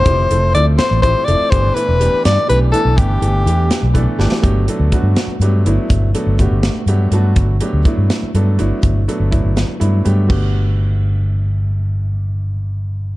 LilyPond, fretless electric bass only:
\new Staff \with { instrumentName = "Fretless electric bass" } { \clef bass \time 6/8 \key g \major \tempo 4. = 82 f,,8 f,,8 d,8 r16 a,,8 r16 f,,16 r16 | g,,8 r16 e,,8 r16 g,16 r16 b,,8 r16 b,,16 | g,,8 g,,8 e,8 r16 b,,8 r16 g,,16 r16 | g,,8 r16 d,16 r16 g,16 r8 g,8 g,,16 r16 |
g,,8 r16 g,,8 g,,8 r16 g,8 g,8 | g,,8 r16 d,16 r16 g,16 r8 g,8 g,,16 r16 | g,,8 r16 g,,8 g,,8 r16 g,8 g,8 | g,,2.~ |
g,,2. | }